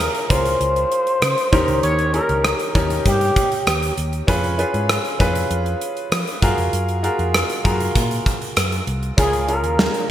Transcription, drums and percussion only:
0.00 cross-stick, closed hi-hat
0.15 closed hi-hat
0.30 kick, closed hi-hat
0.45 closed hi-hat
0.61 closed hi-hat
0.76 closed hi-hat
0.92 closed hi-hat
1.07 closed hi-hat
1.22 cross-stick, closed hi-hat
1.38 closed hi-hat
1.53 kick, closed hi-hat
1.68 closed hi-hat
1.83 closed hi-hat
1.99 closed hi-hat
2.14 closed hi-hat
2.29 closed hi-hat
2.44 cross-stick, closed hi-hat
2.59 closed hi-hat
2.75 kick, closed hi-hat
2.90 closed hi-hat
3.06 kick, closed hi-hat
3.21 closed hi-hat
3.36 kick, closed hi-hat
3.52 closed hi-hat
3.67 cross-stick, closed hi-hat
3.83 closed hi-hat
3.98 closed hi-hat
4.13 closed hi-hat
4.28 kick, closed hi-hat
4.44 closed hi-hat
4.59 closed hi-hat
4.74 closed hi-hat
4.89 cross-stick, closed hi-hat
5.05 closed hi-hat
5.20 kick, closed hi-hat
5.35 closed hi-hat
5.51 closed hi-hat
5.66 closed hi-hat
5.81 closed hi-hat
5.97 closed hi-hat
6.12 cross-stick, closed hi-hat
6.27 closed hi-hat
6.42 kick, closed hi-hat
6.58 closed hi-hat
6.73 closed hi-hat
6.89 closed hi-hat
7.04 closed hi-hat
7.19 closed hi-hat
7.34 cross-stick, closed hi-hat
7.50 closed hi-hat
7.65 kick, closed hi-hat
7.80 closed hi-hat
7.95 kick, closed hi-hat
8.11 closed hi-hat
8.26 kick, closed hi-hat
8.42 closed hi-hat
8.57 cross-stick, closed hi-hat
8.72 closed hi-hat
8.87 closed hi-hat
9.03 closed hi-hat
9.18 kick, closed hi-hat
9.33 closed hi-hat
9.48 closed hi-hat
9.64 closed hi-hat
9.79 snare
9.94 closed hi-hat

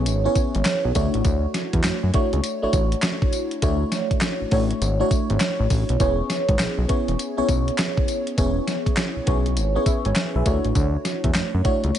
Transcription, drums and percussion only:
0.06 closed hi-hat, tambourine
0.35 kick, closed hi-hat, tambourine
0.55 closed hi-hat
0.65 snare, clap, closed hi-hat, tambourine
0.95 kick, closed hi-hat, tambourine
1.14 closed hi-hat
1.25 kick, closed hi-hat, tambourine
1.54 snare, closed hi-hat, tambourine
1.73 kick, closed hi-hat
1.84 snare, clap, closed hi-hat, tambourine
2.14 kick, closed hi-hat
2.33 closed hi-hat
2.44 closed hi-hat, tambourine
2.73 kick, closed hi-hat, tambourine
2.92 closed hi-hat
3.02 snare, clap, closed hi-hat, tambourine
3.22 kick
3.33 closed hi-hat, tambourine
3.51 closed hi-hat
3.62 kick, closed hi-hat, tambourine
3.92 snare, closed hi-hat, tambourine
4.11 kick, closed hi-hat
4.21 snare, clap, closed hi-hat, tambourine
4.51 kick, open hi-hat
4.71 closed hi-hat
4.82 closed hi-hat, tambourine
5.11 kick, closed hi-hat, tambourine
5.30 closed hi-hat
5.40 snare, clap, closed hi-hat, tambourine
5.70 kick, open hi-hat, tambourine
5.89 closed hi-hat
6.00 kick, closed hi-hat, tambourine
6.30 snare, closed hi-hat, tambourine
6.49 kick, closed hi-hat
6.59 snare, clap, closed hi-hat, tambourine
6.89 kick, closed hi-hat
7.08 closed hi-hat
7.19 closed hi-hat, tambourine
7.49 kick, closed hi-hat, tambourine
7.68 closed hi-hat
7.78 snare, clap, closed hi-hat, tambourine
7.97 kick
8.08 closed hi-hat, tambourine
8.27 closed hi-hat
8.38 kick, closed hi-hat, tambourine
8.68 snare, closed hi-hat, tambourine
8.86 kick, closed hi-hat
8.97 snare, clap, closed hi-hat, tambourine
9.27 kick, closed hi-hat
9.46 closed hi-hat
9.57 closed hi-hat, tambourine
9.86 kick, closed hi-hat, tambourine
10.05 closed hi-hat
10.16 snare, clap, closed hi-hat, tambourine
10.46 kick, closed hi-hat, tambourine
10.64 closed hi-hat
10.75 kick, closed hi-hat, tambourine
11.05 snare, closed hi-hat, tambourine
11.24 kick, closed hi-hat
11.34 snare, clap, closed hi-hat, tambourine
11.65 kick, closed hi-hat
11.84 closed hi-hat
11.95 closed hi-hat, tambourine

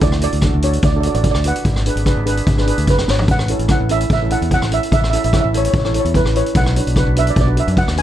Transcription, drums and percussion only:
0.01 kick, closed hi-hat
0.12 cross-stick
0.21 closed hi-hat
0.32 closed hi-hat
0.41 kick, cross-stick, closed hi-hat
0.62 closed hi-hat
0.73 closed hi-hat
0.82 kick, closed hi-hat
1.03 closed hi-hat
1.14 closed hi-hat
1.24 kick, closed hi-hat
1.34 cross-stick
1.44 closed hi-hat
1.56 closed hi-hat
1.65 kick, closed hi-hat
1.76 cross-stick
1.86 closed hi-hat
1.97 closed hi-hat
2.06 kick, cross-stick, closed hi-hat
2.26 closed hi-hat
2.37 closed hi-hat
2.47 kick, closed hi-hat
2.58 cross-stick
2.67 closed hi-hat
2.78 closed hi-hat
2.87 kick, closed hi-hat
2.98 cross-stick
3.08 snare
3.19 floor tom
3.28 kick, closed hi-hat
3.39 cross-stick
3.48 closed hi-hat
3.59 closed hi-hat
3.68 kick, cross-stick, closed hi-hat
3.89 closed hi-hat
4.00 closed hi-hat
4.10 kick, closed hi-hat
4.30 closed hi-hat
4.42 closed hi-hat
4.51 kick, closed hi-hat
4.62 cross-stick
4.72 closed hi-hat
4.83 closed hi-hat
4.92 kick, closed hi-hat
5.04 cross-stick
5.13 closed hi-hat
5.24 closed hi-hat
5.33 kick, cross-stick, closed hi-hat
5.54 closed hi-hat
5.65 closed hi-hat
5.74 kick, closed hi-hat
5.85 cross-stick
5.94 closed hi-hat
6.05 closed hi-hat
6.14 kick, closed hi-hat
6.25 cross-stick
6.35 closed hi-hat
6.46 closed hi-hat
6.55 kick, closed hi-hat
6.66 cross-stick
6.76 closed hi-hat
6.87 closed hi-hat
6.96 kick, cross-stick, closed hi-hat
7.16 closed hi-hat
7.27 closed hi-hat
7.36 kick, closed hi-hat
7.57 closed hi-hat
7.68 closed hi-hat
7.77 kick, closed hi-hat
7.88 cross-stick
7.97 closed hi-hat

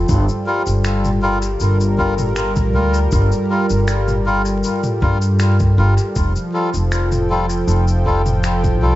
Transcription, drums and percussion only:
0.09 kick, shaker
0.29 shaker
0.67 shaker
0.85 finger snap, shaker
1.05 mid tom, shaker
1.42 shaker
1.60 shaker
1.81 shaker
1.99 kick
2.18 mid tom, shaker
2.36 finger snap, shaker
2.56 kick, mid tom, shaker
2.94 shaker
3.12 kick, shaker
3.32 shaker
3.70 shaker
3.88 finger snap, shaker
4.08 mid tom, shaker
4.46 shaker
4.64 shaker
4.84 mid tom, shaker
5.02 kick
5.22 shaker
5.40 finger snap, shaker
5.59 kick, shaker
5.98 shaker
6.16 kick, shaker
6.36 shaker
6.74 shaker
6.92 finger snap, shaker
7.12 mid tom, shaker
7.50 shaker
7.68 shaker
7.88 shaker
8.06 kick
8.26 mid tom, shaker
8.44 finger snap, shaker
8.64 kick, mid tom, shaker

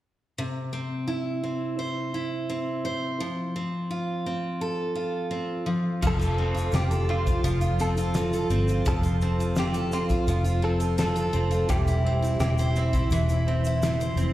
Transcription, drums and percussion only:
6.03 kick, crash, shaker
6.21 shaker
6.57 shaker
6.72 shaker
6.74 snare, shaker
6.91 shaker
7.26 kick, shaker
7.44 shaker
7.61 shaker
7.79 shaker
7.97 shaker
8.14 snare, shaker
8.16 shaker
8.33 shaker
8.50 shaker
8.68 shaker
8.85 kick, shaker
9.03 shaker
9.21 shaker
9.40 shaker
9.55 snare, shaker
9.74 shaker
9.92 shaker
10.09 kick, shaker
10.27 shaker
10.45 shaker
10.80 shaker
10.98 snare, shaker
11.16 shaker
11.33 shaker
11.51 shaker
11.69 kick, shaker
11.87 shaker
12.24 shaker
12.40 snare, shaker
12.58 shaker
12.76 shaker
12.94 kick, shaker
13.10 shaker
13.13 shaker
13.29 shaker
13.64 shaker
13.83 snare, shaker
14.00 shaker
14.17 shaker

